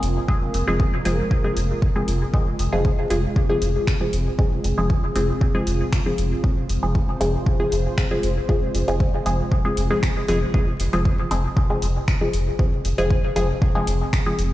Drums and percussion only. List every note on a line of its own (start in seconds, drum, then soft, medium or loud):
0.03 open hi-hat medium
0.28 kick loud
0.54 open hi-hat medium
0.80 kick loud
1.05 open hi-hat medium
1.31 kick loud
1.57 open hi-hat medium
1.82 kick loud
2.08 open hi-hat medium
2.34 kick loud
2.59 open hi-hat medium
2.85 kick loud
3.10 open hi-hat medium
3.36 kick loud
3.62 open hi-hat medium
3.87 finger snap medium
3.87 kick loud
4.13 open hi-hat medium
4.39 kick loud
4.64 open hi-hat medium
4.90 kick loud
5.16 open hi-hat medium
5.41 kick loud
5.67 open hi-hat medium
5.92 finger snap medium
5.92 kick loud
6.18 open hi-hat medium
6.44 kick loud
6.69 open hi-hat medium
6.95 kick loud
7.21 open hi-hat medium
7.46 kick loud
7.72 open hi-hat medium
7.98 finger snap medium
7.98 kick loud
8.23 open hi-hat medium
8.49 kick loud
8.75 open hi-hat medium
8.88 open hi-hat soft
9.00 kick loud
9.26 open hi-hat medium
9.51 kick loud
9.77 open hi-hat medium
10.03 finger snap medium
10.03 kick loud
10.28 open hi-hat medium
10.54 kick loud
10.80 open hi-hat medium
10.93 open hi-hat soft
11.05 kick loud
11.31 open hi-hat medium
11.57 kick loud
11.82 open hi-hat medium
12.08 finger snap medium
12.08 kick loud
12.34 open hi-hat medium
12.59 kick loud
12.85 open hi-hat medium
12.98 open hi-hat soft
13.10 kick loud
13.36 open hi-hat medium
13.62 kick loud
13.87 open hi-hat medium
14.13 finger snap loud
14.13 kick loud
14.39 open hi-hat medium